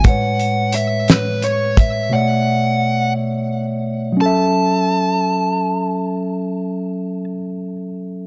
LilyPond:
<<
  \new Staff \with { instrumentName = "Lead electric guitar" } { \time 6/8 \key fis \minor \tempo 4. = 58 fis''4 e''8 b'8 cis''8 e''8 | fis''4. r4. | a''2.~ | a''2. | }
  \new Staff \with { instrumentName = "Tine electric piano" } { \time 6/8 \key fis \minor <a, gis b' cis''>2. | <b, a cis'' d'' e''>2. | <fis cis' a' e''>2.~ | <fis cis' a' e''>2. | }
  \new DrumStaff \with { instrumentName = "Drums" } \drummode { \time 6/8 <hh bd>8 hh8 hh8 <hh sn>8 hh8 <hh bd>8 | r4. r4. | r4. r4. | r4. r4. | }
>>